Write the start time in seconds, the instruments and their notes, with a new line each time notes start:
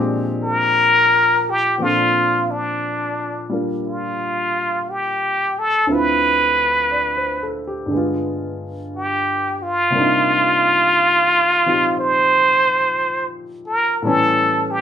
Already playing: grand piano A#2 F3 G#3 C4 D4 G4
0.44 muted trumpet A#4
1.50 muted trumpet G4
1.78 grand piano A#2 F3 C4
1.82 grand piano D4 A4, muted trumpet F4
2.51 muted trumpet D4
3.50 grand piano G3 A#3 D4 F4
3.87 muted trumpet F4
4.91 muted trumpet G4
5.59 muted trumpet A4
5.87 grand piano D2 D3 C4 E4
5.91 grand piano F4, muted trumpet B4
6.91 grand piano D5
7.17 grand piano C5
7.43 grand piano A4
7.67 grand piano G4
7.86 grand piano G2 D3
7.91 grand piano G#3 B3
7.97 grand piano F4
8.96 muted trumpet G4
9.63 muted trumpet F4
9.91 grand piano C3 G3
9.95 grand piano A#3 D4
9.99 grand piano D#4 F4
11.66 grand piano F3 C4 D#4 F4 G4
11.99 muted trumpet C5
13.67 muted trumpet A#4
14.02 grand piano A2 E3 G3 B3, muted trumpet A4
14.07 grand piano C#4
14.71 muted trumpet G4